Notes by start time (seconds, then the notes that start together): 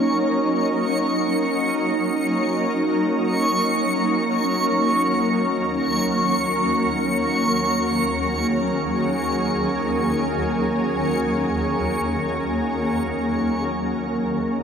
Already playing: F#3 A#3 C#4 D#4 A#4 C#6
4.53 D#2
7.60 G#4
13.61 D#3 G#4
14.30 F#4